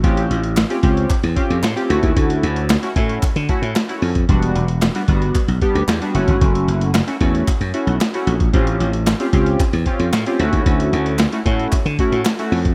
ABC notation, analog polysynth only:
X:1
M:4/4
L:1/16
Q:1/4=113
K:D
V:1 name="Analog polysynth"
[^B,C^EG]3 z2 [B,CEG] [B,CEG]2 z2 [B,CEG]2 z [B,CEG] [A,C=EF]2- | [A,CEF]4 z [A,CEF] [A,CEF]2 z2 [A,CEF]2 z [A,CEF]2 z | [G,B,DF]3 z2 [G,B,DF] [G,B,DF]2 z2 [G,B,DG]2 z [G,B,DF] [A,CEF]2- | [A,CEF]4 z [A,CEF] [A,CEF]2 z2 [A,CEF]2 z [A,CEF]2 z |
[^B,C^EG]3 z2 [B,CEG] [B,CEG]2 z2 [B,CEG]2 z [B,CEG] [A,C=EF]2- | [A,CEF]4 z [A,CEF] [A,CEF]2 z2 [A,CEF]2 z [A,CEF]2 z |]